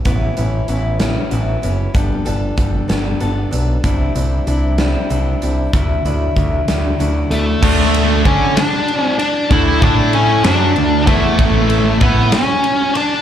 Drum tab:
CC |------|------|------|------|
RD |------|------|------|------|
HH |xxxxxx|xxxxxx|xxxxxx|xxxxxx|
SD |---o--|---o--|---o--|---o--|
BD |o-----|o-o---|o-----|o-o---|

CC |x-----|------|------|
RD |-xxxxx|xxxxxx|xxxxxx|
HH |------|------|------|
SD |---o--|---o--|---o--|
BD |o-o---|oo---o|o-o---|